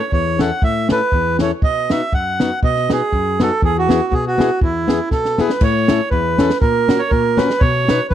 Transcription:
Already playing: C#5
0.12 E2 C#5, kick
0.39 C#4 E4 A4 F#5, snare
0.62 A2 E5, kick
0.89 C#4 E4 A4 B4, snare
1.12 E2, kick
1.39 C#4 E4 A4 C#5, snare
1.62 B2 D#5, kick
1.90 B3 D#4 F#4 E5, snare
2.13 F#2 F#5, kick
2.40 B3 D#4 F#4, snare
2.63 B2 D#5, kick
2.76 snare
2.90 B3 D#4 F#4 G#4, snare
3.13 F#2, kick
3.40 B3 D#4 F#4 A4, snare
3.62 E2 G#4, kick
3.79 F#4
3.89 B3 E4 G#4, snare
4.12 B2 G#4, kick
4.27 F#4
4.38 B3 E4 G#4, snare
4.61 E2 E4, kick
4.88 B3 E4 G#4, snare
5.11 B2 A4, kick, snare
5.25 snare
5.38 B3 E4 G#4 B4, snare
5.50 snare
5.61 A2 C#5, kick, crash
5.88 C#4 E4 A4, snare, hi-hat pedal
6.11 E2 B4, kick
6.38 C#4 E4 A4, snare, hi-hat pedal
6.50 snare
6.61 A#2 A#4, kick
6.88 C#4 F#4 A#4, snare, hi-hat pedal
6.99 C#5
7.09 A#2 A#4, kick
7.37 C#4 F#4 A#4 B4, snare, hi-hat pedal
7.50 snare
7.60 B2 C#5, kick
7.88 D#4 F#4 B4, snare, hi-hat pedal
8.10 F#2 B4, kick

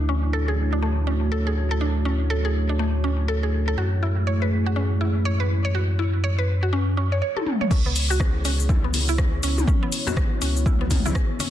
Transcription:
Already playing: D2 A3 D4 E4 F#4 C#5
0.09 C#4
0.33 A4
0.48 G#4
0.73 D4
0.82 A3
1.07 C#4
1.32 A4
1.47 G#4
1.71 A4
1.81 D4
2.05 C#4
2.30 A4
2.45 G#4
2.69 D4
2.79 A3
3.04 C#4
3.28 A4
3.43 G#4
3.68 A4
3.77 F#2 A3 E4 F#4 G#4
4.03 E4
4.27 C#5
4.42 B4
4.66 F#4
4.76 C#4
5.01 E4
5.25 C#5
5.40 B4
5.65 C#5
5.75 F#4
5.99 E4
6.24 C#5
6.39 B4
6.63 F#4
6.73 C#4
6.97 C#4
7.12 C#5
7.22 C#5
7.36 A4, high tom
7.46 mid tom
7.61 C#5, mid tom
7.71 C#2 B3 C#4 E4 G#4 C#5, kick, crash, shaker
7.86 B3
7.96 open hi-hat, shaker
8.10 F#4, shaker
8.20 G#4, kick, cross-stick, high conga, shaker
8.45 C#4, open hi-hat, shaker
8.60 shaker
8.69 E4, kick, low conga, shaker
8.84 B3
8.94 open hi-hat, high conga, shaker
9.09 E4, shaker
9.18 G#4, kick, cross-stick, high conga, shaker
9.43 C#2 C#4, open hi-hat, shaker
9.58 mid tom, shaker
9.67 C#4 F#4, kick, shaker
9.83 B3
9.92 open hi-hat, shaker
10.07 F#4, low conga, shaker
10.17 G#1 G#4, kick, cross-stick, high conga, shaker
10.42 C#2 C#4, open hi-hat, shaker
10.57 shaker
10.66 E4, kick, mid tom, shaker
10.81 B3, high conga
10.91 kick, open hi-hat, mid tom, low conga, shaker
11.06 E4, high conga, shaker
11.15 G#4, kick, cross-stick, shaker
11.39 C#4, open hi-hat, high conga, shaker

